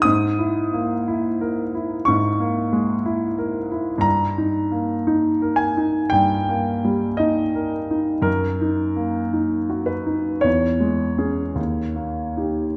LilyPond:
\new Staff \with { instrumentName = "Grand piano" } { \time 4/4 \key dis \phrygian \tempo 4 = 57 << { dis'''2 cis'''2 | ais''4. gis''8 g''4 dis''8 r8 | ais'4. b'8 cis''2 | } \\ { \tuplet 3/2 { gis,8 e'8 ais8 e'8 ais'8 e'8 gis,8 ais8 gis8 e'8 ais'8 e'8 } | \tuplet 3/2 { g,8 dis'8 ais8 dis'8 ais'8 dis'8 g,8 ais8 g8 dis'8 ais'8 dis'8 } | \tuplet 3/2 { fis,8 dis'8 ais8 dis'8 fis'8 dis'8 e,8 gis8 <cis' gis'>8 dis,8 ais8 <dis' g'>8 } | } >> }